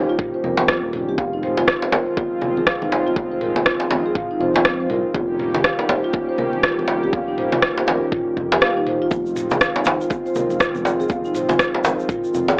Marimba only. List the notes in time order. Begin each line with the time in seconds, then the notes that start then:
0.09 F4
0.34 C5
0.44 A#4
0.69 F4
1.09 G4
1.19 F5
1.33 D#4
1.43 C5
1.58 F4
1.83 C5
1.93 A#4
2.18 F4
2.57 G#4
2.67 F5
2.82 D#4
2.92 C5
3.07 F4
3.32 C5
3.41 A#4
3.66 F4
4.06 G#4
4.16 F5
4.31 D#4
4.41 C5
4.56 F4
4.80 C5
4.90 A#4
5.15 F4
5.55 G4
5.65 F5
5.79 D#4
5.89 C5
6.04 F4
6.29 C5
6.39 A#4
6.63 F4
7.03 G4
7.13 F5
7.28 D#4
7.38 C5
7.53 F4
7.78 C5
7.88 A#4
8.12 F4
8.52 G4
8.62 F5
8.77 D#4
8.87 C5
9.02 F4
9.52 G#4
9.61 F5
9.76 D#4
9.86 C5
10.01 F4
10.26 C5
10.36 A#4
10.61 F4
11.00 G#4
11.10 F5
11.25 D#4
11.35 C5
11.49 F4
11.74 C5
11.84 A#4
12.09 F4
12.49 G#4